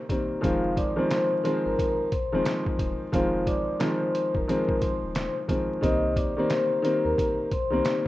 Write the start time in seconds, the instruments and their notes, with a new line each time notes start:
0.09 upright piano D#3 G3 A#3 C4, kick, closed hi-hat
0.41 sub bass F1, upright piano D#3 F3 G#3 C4, vibraphone F4 F5, kick, closed hi-hat
0.77 vibraphone D5 D6, kick, closed hi-hat
0.96 upright piano D#3 F3 G#3 C4
1.10 vibraphone C5 C6, snare, closed hi-hat
1.43 upright piano D#3 F3 G#3 C4, closed hi-hat
1.65 sub bass G#1, vibraphone A#4 A#5
1.79 kick, closed hi-hat
2.12 vibraphone C5 C6, kick, closed hi-hat
2.32 sub bass F1, upright piano D#3 F3 G#3 C4
2.45 snare, closed hi-hat
2.66 kick
2.79 sub bass F1, kick, closed hi-hat
3.12 sub bass F1, upright piano D#3 F3 G#3 C4, vibraphone F4 F5, kick, closed hi-hat
3.47 vibraphone D5 D6, kick, closed hi-hat
3.79 upright piano D#3 F3 G#3 C4, vibraphone C5 C6, snare, closed hi-hat
4.15 closed hi-hat
4.35 sub bass F1, vibraphone A#4 A#5, kick
4.47 upright piano D#3 F3 G#3 C4, closed hi-hat
4.69 kick
4.82 vibraphone C5 C6, kick, closed hi-hat
5.03 sub bass D#1
5.15 snare, closed hi-hat
5.48 upright piano D#3 F3 G#3 C4, kick, closed hi-hat
5.81 sub bass C2, upright piano D#3 G3 A#3 C4, vibraphone D#5 D#6, kick, closed hi-hat
6.16 vibraphone D5 D6, kick, closed hi-hat
6.37 upright piano D#3 G3 A#3 C4
6.50 vibraphone C5 C6, snare, closed hi-hat
6.82 upright piano D#3 G3 A#3 C4, closed hi-hat
7.05 sub bass D#2, vibraphone A#4 A#5
7.18 kick, closed hi-hat
7.51 vibraphone C5 C6, kick, closed hi-hat
7.70 sub bass C2, upright piano D#3 G3 A#3 C4
7.85 snare, closed hi-hat